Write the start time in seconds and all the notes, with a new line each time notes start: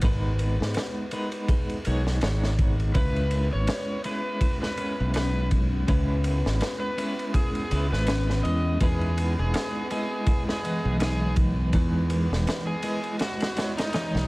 0.01 G#1 G#3 B3 D#4 B4, kick, ride
0.39 ride
0.60 G#2, snare
0.74 B4, snare, ride
1.11 G#3 B3 D#4 B4, ride
1.32 ride
1.49 G#4, kick, ride
1.69 ride
1.85 B1 G#3 B3 D#4 C#5, ride
2.07 snare
2.21 G#1 G#3 B3 D#4 G#4 C#5, snare, ride
2.43 snare
2.59 kick, ride
2.80 ride
2.94 C#2 G#3 B3 C#4 E4 B4, kick, ride
3.16 ride
3.31 ride
3.53 G#1 C#5
3.67 B4, snare, ride
4.04 G#3 C#4 E4 B4, ride
4.41 E4, kick, ride
4.62 B4, snare
4.77 G#3 C#4 E4 B4, ride
5.00 B1
5.14 C#4 B4, snare, ride
5.51 kick, ride
5.88 C#2 G#3 C#4 E4 B4, kick, ride
6.24 ride
6.46 G#1, snare
6.61 B4, snare, ride
6.80 B4
6.97 G#3 C#4 E4 B4, ride
7.19 ride
7.34 E4 G#4, kick, ride
7.55 ride
7.71 C#2 G#3 C#4 E4 B4, ride
7.92 G#1 B4, snare
8.07 C#4, snare, ride
8.30 snare
8.43 E2 D#5, ride
8.80 E2 G#3 D#4 E4 G#4 B4, kick, ride
9.01 ride
9.17 ride
9.39 E1 G#4
9.54 B4, snare, ride
9.91 G#3 E4 G#4 B4 D#5, ride
10.27 E4, kick, ride
10.48 G#4, snare
10.64 E3 G#3 B4 D#5, ride
10.85 B1
11.00 D#4 G#4, snare, ride
11.36 kick, ride
11.73 E2 E3 G#3 D#4 B4, kick, ride
12.10 ride
12.31 E1, snare
12.47 B4, snare, ride
12.67 G#4
12.82 G#3 E4 B4 D#5, ride
13.04 ride
13.19 E4 F#4, snare, ride
13.40 snare, ride
13.57 G#3 E4 C#5 D#5, snare, ride
13.77 D#4, snare, ride
13.93 E3 G#3 D#4 C#5 D#5, snare, ride
14.15 B1, snare